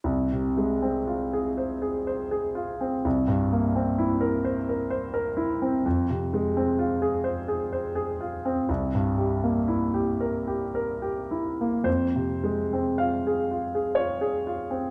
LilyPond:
\new Staff \with { instrumentName = "Grand piano" } { \time 3/4 \key f \minor \tempo 4 = 62 << { r2. | r2. | r2. | r2. |
c''4 f''4 des''4 | } \\ { c,16 c16 aes16 c'16 f'16 aes'16 c''16 aes'16 c''16 aes'16 f'16 c'16 | c,16 g,16 bes16 c'16 e'16 bes'16 c''16 bes'16 c''16 bes'16 e'16 c'16 | f,16 c16 aes16 c'16 f'16 aes'16 c''16 aes'16 c''16 aes'16 f'16 c'16 | c,16 g,16 g16 bes16 e'16 g'16 bes'16 g'16 bes'16 g'16 e'16 bes16 |
f,16 c16 aes16 c'16 f'16 aes'16 f'16 aes'16 f'16 aes'16 f'16 c'16 | } >> }